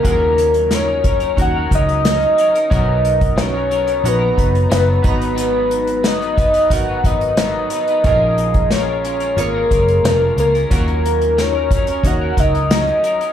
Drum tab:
HH |x-xxx-xxx-xxxxxx|x-xxx-xxx-xxx-xx|x-xxxxxxx-xxx-xx|x-xxx-xxx-xxx-xx|
SD |----o-------o---|----o-------o---|----o-------o---|----o-------o---|
BD |o-----o-o-o-----|o--o------o---o-|------o-o-o-----|o--o------o-----|

HH |xxxxx-xxx-xxxxxx|
SD |----o-------o---|
BD |o-----o-o-o-----|